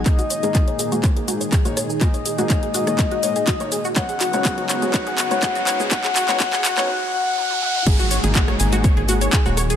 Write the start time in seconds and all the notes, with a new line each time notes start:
0.06 G#1 G#2 A#2 D#3 G#3 A#3 D#4 G#4 D#5, kick, clap, closed hi-hat, riser, shaker
0.19 F#4, closed hi-hat, shaker
0.30 C#5, open hi-hat, shaker
0.43 G#1 G#2 A#3 D#4 G#4, closed hi-hat, shaker
0.55 F#4, kick, clap, closed hi-hat, shaker
0.68 C#5, closed hi-hat
0.79 G#1 G#4, open hi-hat, shaker
0.92 G#2 A#3 D#4 F#4 G#4, closed hi-hat, shaker
1.04 C#5, kick, clap, closed hi-hat, shaker
1.16 G#1 G#4, closed hi-hat
1.28 G#2 A#3 D#4 F#4 G#4, open hi-hat, shaker
1.41 C#5, closed hi-hat, shaker
1.52 G#4, kick, clap, closed hi-hat, shaker
1.65 D#1 G#2 A#3 D#4 F#4 C#5, closed hi-hat, shaker
1.77 C#5, cross-stick, open hi-hat, shaker
1.90 G#4, shaker
2.01 G#2 A#3 D#4 F#4 G#4 D#5, kick, clap, closed hi-hat, shaker
2.14 C#5, closed hi-hat, shaker
2.26 G#4, open hi-hat, shaker
2.38 G#1 G#2 A#3 D#4 F#4 G#4, closed hi-hat, shaker
2.50 C#5, kick, clap, closed hi-hat, shaker
2.63 G#4, closed hi-hat
2.74 G#1 F#4, open hi-hat, shaker
2.87 G#2 A#3 D#4 G#4 C#5, cross-stick, closed hi-hat, shaker
2.99 G#4, kick, clap, closed hi-hat, shaker
3.11 G#1 F#4, closed hi-hat
3.23 G#2 A#3 D#4 G#4 C#5, open hi-hat, shaker
3.36 G#4, closed hi-hat, shaker
3.47 F#4, kick, clap, closed hi-hat, shaker
3.60 G#2 A#3 D#4 C#5, closed hi-hat, shaker
3.72 G#4, open hi-hat, shaker
3.85 F#4, shaker
3.96 G#2 C#3 F#3 B3 C#4 D#4 F#4 C#5 F#5, kick, clap, closed hi-hat, shaker
4.09 G#4, closed hi-hat, shaker
4.21 F#4, clap, open hi-hat, shaker
4.33 G#1 G#2 B3 C#4 D#4 F#4 C#5, closed hi-hat, shaker
4.45 G#4, kick, clap, closed hi-hat, shaker
4.58 F#4, closed hi-hat
4.69 G#1 C#5, clap, open hi-hat, shaker
4.82 G#2 B3 C#4 D#4 F#4 G#4 C#5, closed hi-hat, shaker
4.94 G#2 B3 C#4 D#4 F#4 C#5 F#5, kick, clap, closed hi-hat, shaker
5.07 G#1 G#4, closed hi-hat
5.18 F#4, clap, open hi-hat, shaker
5.31 G#2 B3 C#4 D#4 F#4 C#5, closed hi-hat, shaker
5.43 G#4, kick, clap, closed hi-hat, shaker
5.55 D#1 F#4, closed hi-hat, shaker
5.67 C#5, clap, open hi-hat, shaker
5.80 G#2 B3 C#4 D#4 F#4 G#4 C#5, shaker
5.91 G#2 B3 C#4 D#4 F#4 C#5 F#5, kick, clap, closed hi-hat, shaker
6.04 G#4, clap, closed hi-hat, shaker
6.16 F#4, clap, open hi-hat, shaker
6.29 G#1 G#2 B3 C#4 D#4 F#4 C#5, clap, closed hi-hat, shaker
6.40 G#2 B3 C#4 D#4 F#4 C#5 F#5, kick, clap, closed hi-hat, shaker
6.53 G#4, clap, closed hi-hat, shaker
6.65 G#1 F#4, clap, open hi-hat, shaker
6.77 G#2 B3 C#4 D#4 F#4 C#5, clap, closed hi-hat, shaker
6.89 F#5
7.14 F#5
7.38 F#5, high tom
7.51 high tom
7.62 F#5, mid tom
7.75 mid tom
7.87 G#1 G#2 A#2 D#3 G#3 A#3 D#4 G#4 G#5, kick, closed hi-hat, crash, downlifter, shaker
7.99 F#4 F#5, closed hi-hat, shaker
8.11 C#5 C#6, open hi-hat, shaker
8.24 G#1 G#2 A#3 D#4 G#4 G#5, closed hi-hat, shaker
8.35 F#4 F#5, kick, clap, closed hi-hat, shaker
8.48 C#5 C#6, cross-stick, closed hi-hat
8.60 G#1 G#4 G#5, open hi-hat, shaker
8.73 G#2 A#3 D#4 F#4 G#4 F#5, closed hi-hat, shaker
8.84 C#5 C#6, kick, closed hi-hat, shaker
8.97 G#1 G#4 G#5, closed hi-hat
9.09 G#2 A#3 D#4 F#4 G#4 F#5, open hi-hat, shaker
9.21 C#5 C#6, closed hi-hat, shaker
9.33 G#4 G#5, kick, clap, closed hi-hat, shaker
9.46 D#1 G#2 A#3 D#4 F#4 C#5 F#5, closed hi-hat, shaker
9.57 C#5 C#6, cross-stick, open hi-hat, shaker
9.70 G#4 G#5, closed hi-hat, shaker